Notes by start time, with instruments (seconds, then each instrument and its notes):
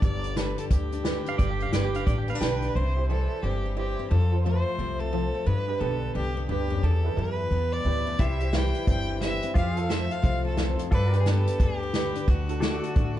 Already playing: steel-string acoustic guitar D3 D4
0.02 upright bass G1, steel-string acoustic guitar G2 G4, fiddle D5, kick, closed hi-hat
0.24 steel-string acoustic guitar D4, closed hi-hat
0.36 steel-string acoustic guitar D3, honky-tonk piano D4 G4 A4, fiddle B4, snare, closed hi-hat
0.58 steel-string acoustic guitar G4, fiddle A4, closed hi-hat
0.71 upright bass D2, steel-string acoustic guitar G2, fiddle G4, kick, closed hi-hat
0.92 steel-string acoustic guitar D4, closed hi-hat
1.03 steel-string acoustic guitar D3, honky-tonk piano D4 G4 B4, snare, closed hi-hat
1.26 steel-string acoustic guitar D4, pedal steel guitar F5, closed hi-hat
1.38 upright bass G1, steel-string acoustic guitar G2 D4, pedal steel guitar D5, kick, closed hi-hat
1.51 pedal steel guitar G4
1.60 steel-string acoustic guitar D4, pedal steel guitar F5, closed hi-hat
1.72 upright bass G1, steel-string acoustic guitar D3, honky-tonk piano D4 G4 B4, pedal steel guitar D5, snare, closed hi-hat
1.85 pedal steel guitar G4
1.94 steel-string acoustic guitar D4, pedal steel guitar F5, closed hi-hat
2.07 upright bass A1, steel-string acoustic guitar G2, pedal steel guitar D5, kick, closed hi-hat
2.18 pedal steel guitar G4
2.28 steel-string acoustic guitar B3, fiddle B4, pedal steel guitar F5, closed hi-hat
2.35 steel-string acoustic guitar D4
2.40 upright bass B1, steel-string acoustic guitar D3, honky-tonk piano D4 G4 B4, pedal steel guitar G5, snare, closed hi-hat
2.62 steel-string acoustic guitar G4, closed hi-hat
2.75 upright bass C2, steel-string acoustic guitar C3 E4, fiddle C5
2.96 honky-tonk piano E4 G4 C5
3.09 steel-string acoustic guitar E3 G3, honky-tonk piano E4 G4 C5, fiddle A4
3.43 upright bass G1, steel-string acoustic guitar G2 C4, fiddle G4
3.66 steel-string acoustic guitar G3
3.76 steel-string acoustic guitar E3, honky-tonk piano E4 G4 C5, fiddle G4
3.99 steel-string acoustic guitar C4
4.11 steel-string acoustic guitar F2 F4, upright bass F2, fiddle A4
4.32 honky-tonk piano F4 A4 C5
4.44 steel-string acoustic guitar F3 A3, honky-tonk piano F4 A4 C5, fiddle C5
4.79 upright bass C2, steel-string acoustic guitar C3 C4
4.99 steel-string acoustic guitar A3, fiddle A4
5.12 steel-string acoustic guitar F3, honky-tonk piano F4 A4 C5
5.35 steel-string acoustic guitar C4
5.46 steel-string acoustic guitar G2 G4, upright bass G2, fiddle B4
5.67 honky-tonk piano D4 G4 B4
5.80 upright bass B1, steel-string acoustic guitar D3 B3, honky-tonk piano D4 G4 B4, fiddle A4
6.15 upright bass C2, steel-string acoustic guitar G2 D4, fiddle G4
6.37 steel-string acoustic guitar B3
6.49 upright bass D2, steel-string acoustic guitar G2, honky-tonk piano D4 G4 B4, fiddle G4
6.70 steel-string acoustic guitar F#2
6.83 upright bass E2, steel-string acoustic guitar E2 G4, fiddle A4
7.04 honky-tonk piano E4 G4 B4
7.16 upright bass F#2, steel-string acoustic guitar E3, honky-tonk piano E4 G4 B4, fiddle A#4
7.34 fiddle B4
7.51 upright bass E2, steel-string acoustic guitar B2 B3
7.73 steel-string acoustic guitar G3, fiddle D5
7.85 upright bass D2, steel-string acoustic guitar A2, honky-tonk piano E4 G4 B4
8.07 steel-string acoustic guitar B2
8.19 upright bass C2, steel-string acoustic guitar C3 E4, pedal steel guitar E4 G4 C5, fiddle E5, kick, closed hi-hat
8.40 honky-tonk piano E4 G4 C5, closed hi-hat
8.53 steel-string acoustic guitar E3 G3, honky-tonk piano E4 G4 B4, fiddle G5, snare, closed hi-hat
8.74 closed hi-hat
8.87 upright bass G1, steel-string acoustic guitar G2 C4, fiddle G5, kick, closed hi-hat
9.09 steel-string acoustic guitar G3
9.21 steel-string acoustic guitar E3, honky-tonk piano E4 G4 B4, fiddle E5, snare, closed hi-hat
9.42 steel-string acoustic guitar C4, closed hi-hat
9.54 upright bass F2, steel-string acoustic guitar F2 F4, pedal steel guitar F4 G4 C5, fiddle F5, kick, closed hi-hat
9.77 honky-tonk piano F4 A4 C5, closed hi-hat
9.81 pedal steel guitar A4
9.89 steel-string acoustic guitar F3 A3, honky-tonk piano F4 A4 C5, fiddle E5, snare, closed hi-hat
10.11 fiddle F5, closed hi-hat
10.22 upright bass C2, steel-string acoustic guitar C3 C4, kick, closed hi-hat
10.45 steel-string acoustic guitar A3, fiddle A4
10.57 steel-string acoustic guitar E2, honky-tonk piano F4 A4 C5, snare, closed hi-hat
10.79 steel-string acoustic guitar F2, closed hi-hat
10.91 upright bass G2, steel-string acoustic guitar G2 G4, pedal steel guitar F4 A4 D5, fiddle B4, kick, closed hi-hat
11.12 honky-tonk piano D4 G4 B4, pedal steel guitar G4, closed hi-hat
11.17 fiddle G#4, pedal steel guitar B4
11.25 steel-string acoustic guitar D3 B3, honky-tonk piano D4 G4 B4, fiddle A4, snare, closed hi-hat
11.47 closed hi-hat
11.60 upright bass D2, steel-string acoustic guitar G2 D4, fiddle G4, kick, closed hi-hat
11.83 steel-string acoustic guitar B3
11.94 steel-string acoustic guitar D3, honky-tonk piano D4 G4 B4, snare, closed hi-hat
12.15 steel-string acoustic guitar D4, closed hi-hat
12.28 upright bass D2, steel-string acoustic guitar D3 D4, fiddle F#4, kick, closed hi-hat
12.48 honky-tonk piano D4 F#4 A4, closed hi-hat
12.60 steel-string acoustic guitar A3 D4, honky-tonk piano D4 F#4 A4, pedal steel guitar G4 A4 D5, snare, closed hi-hat
12.80 pedal steel guitar F#4, closed hi-hat
12.96 upright bass A1, steel-string acoustic guitar A2 D4, kick, closed hi-hat